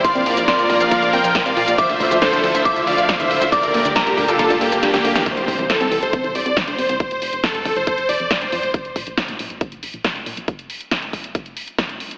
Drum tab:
RD |x---x---x---x---|x---x---x---x---|x---x---x---x---|----------------|
HH |xxoxxxoxxxoxxxox|xxoxxxoxxxoxxxox|xxoxxxoxxxoxxxox|xxoxxxoxxxoxxxox|
SH |xx-xxx-xxx-xxx-x|xx-xxx-xxx-xxx-x|xx-xxx-xxx-xxx-x|----------------|
SD |----o-------o---|----o-------o---|----o-------oo-o|----o-------o---|
BD |o---o-o-o---o---|o-o-o---o---o---|o---o-o-o-------|o-o-o---o---o---|

RD |----------------|----------------|----------------|
HH |xxoxxxoxxxoxxxox|xxoxxxoxxxoxxxox|xxoxxxoxxxoxxxox|
SH |----------------|----------------|----------------|
SD |----o-------o---|----o-------o---|----o-------o---|
BD |o---o-o-o---o---|o-o-o---o---o---|o---o-o-o---o---|